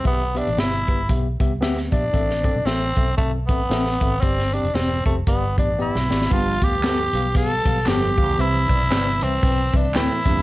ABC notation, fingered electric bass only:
X:1
M:4/4
L:1/16
Q:"Swing" 1/4=115
K:Gmix
V:1 name="Fingered electric bass" clef=bass
B,,,3 A,,, G,,,2 G,,,2 B,,,2 C,,2 D,,2 _B,,,2 | A,,,3 B,,, A,,,2 B,,,2 B,,,2 A,,,2 A,,,2 _A,,,2 | G,,,3 F,,, E,,,2 F,,,2 G,,,2 A,,,3 B,,, _A,,,2 | G,,,2 D,,4 B,,,4 B,,,2 G,,,2 _D,,2 |
C,,2 B,,,2 G,,,2 C,,2 B,,,2 C,,2 D,, z E,, _E,, |]